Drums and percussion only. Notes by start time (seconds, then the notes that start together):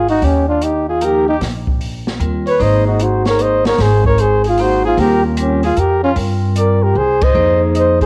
0.08 open hi-hat
0.22 kick, open hi-hat
0.61 closed hi-hat
1.01 closed hi-hat
1.41 kick, snare, open hi-hat
1.67 kick
1.81 open hi-hat
2.07 snare
2.20 closed hi-hat
2.47 open hi-hat
2.60 kick, open hi-hat
2.99 closed hi-hat
3.25 snare, open hi-hat
3.39 closed hi-hat
3.65 snare, open hi-hat
3.78 kick, snare, open hi-hat
4.05 kick
4.18 closed hi-hat
4.44 open hi-hat
4.58 open hi-hat
4.98 kick, open hi-hat
5.37 closed hi-hat
5.63 open hi-hat
5.77 closed hi-hat
6.16 kick, open hi-hat
6.56 closed hi-hat
7.21 kick, ride
7.75 closed hi-hat
8.01 kick, open hi-hat